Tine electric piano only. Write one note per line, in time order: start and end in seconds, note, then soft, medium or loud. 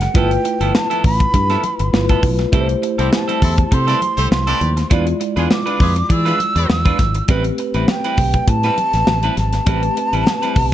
0.00 0.10 G#3 medium
0.00 0.11 F#4 medium
0.00 0.11 G#4 medium
0.00 0.15 A#4 medium
0.14 1.89 A3 medium
0.14 1.90 E4 medium
0.14 1.90 F4 medium
0.14 1.91 B4 medium
1.93 2.50 A3 medium
1.93 2.51 E4 medium
1.93 2.53 F4 medium
1.93 2.53 B4 medium
2.52 4.86 A3 medium
2.52 4.87 E4 medium
2.52 4.87 G4 medium
2.52 2.61 B4 medium
2.61 4.91 C5 medium
4.90 4.97 G3 medium
4.90 7.25 E4 medium
4.90 7.25 F4 medium
4.90 7.26 D5 medium
4.96 7.28 G#3 medium
7.28 9.62 A3 medium
7.28 9.63 C4 medium
7.28 9.63 G4 medium
7.28 9.64 B4 medium
9.66 10.74 A3 medium
9.66 10.74 C4 medium
9.66 10.74 G4 medium
9.66 10.74 B4 medium